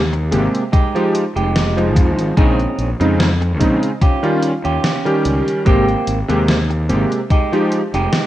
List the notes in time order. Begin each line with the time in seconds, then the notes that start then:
Already playing: D#2
0.13 muted clean electric guitar stroke, closed hi-hat
0.31 G#1 C3 G#3 A#3 G4, muted clean electric guitar stroke, closed hi-hat
0.55 closed hi-hat
0.72 G#3 D#4 G4, kick, closed hi-hat
0.95 F3 G#3 D#4 G4, closed hi-hat
1.15 closed hi-hat
1.36 F1 G#3 D#4 G4, closed hi-hat
1.56 snare, closed hi-hat
1.77 F3 G#3 D#4, closed hi-hat
1.96 F2, kick, closed hi-hat
2.18 G#1, closed hi-hat
2.37 A#1 C#3 G#3 C4 C#4 D#4 G#4, kick, closed hi-hat
2.60 closed hi-hat
2.78 A#1, closed hi-hat
3.00 F2 C#3 G#3 C4 D#4, closed hi-hat
3.20 snare, closed hi-hat
3.41 muted clean electric guitar stroke, closed hi-hat
3.59 A#1 C#3 G#3 C4 D#4, muted clean electric guitar stroke, kick, closed hi-hat
3.83 closed hi-hat
4.01 C#4 F4 G4, kick, closed hi-hat
4.23 D#3 G3 C#4 F4, closed hi-hat
4.43 closed hi-hat
4.64 D#2 C#4 F4 G4, closed hi-hat
4.84 snare, closed hi-hat
5.05 D#3 G3 C#4 G4, closed hi-hat
5.25 C#2, closed hi-hat
5.48 closed hi-hat
5.65 G#1 C3 G#3 A#3 C4 G4, kick, closed hi-hat
5.89 closed hi-hat
6.07 G#1, closed hi-hat
6.28 D#2 C3 G#3 A#3 G4, closed hi-hat
6.48 snare, closed hi-hat
6.70 muted clean electric guitar stroke, closed hi-hat
6.89 G#1 C3 G#3 A#3 G4, muted clean electric guitar stroke, closed hi-hat
7.12 closed hi-hat
7.30 G#3 D#4 G4, kick, closed hi-hat
7.52 F3 G#3 D#4 G4, closed hi-hat
7.72 closed hi-hat
7.94 F1 G#3 D#4 G4, closed hi-hat
8.13 snare, closed hi-hat